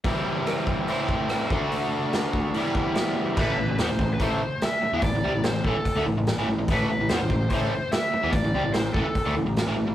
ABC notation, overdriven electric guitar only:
X:1
M:4/4
L:1/16
Q:1/4=145
K:Am
V:1 name="Overdriven electric guitar" clef=bass
[C,E,G,CE]8 [A,,E,A,CE]6 [D,A,D^F]2- | [D,A,D^F]8 [E,G,B,E]8 | [A,,E,A,]2 [A,,E,] [A,,E,] [E,B,] [A,,E,] [A,,E,]2 [A,,E,A,]2 z4 z [E,B,] | [A,,E,] [A,,E,] [C,G,] [A,,E,] [A,,E,]2 [A,,E,] z2 [D,A,] [A,,E,] [A,,E,]2 [A,,E,] [A,,E,] [A,,E,] |
[A,,E,A,]2 [A,,E,] [A,,E,] [E,B,] [A,,E,] [A,,E,]2 [A,,E,A,]2 z4 z [E,B,] | [A,,E,] [A,,E,] [C,G,] [A,,E,] [A,,E,]2 [A,,E,] z2 [D,A,] [A,,E,] [A,,E,]2 [A,,E,] [A,,E,] [A,,E,] |]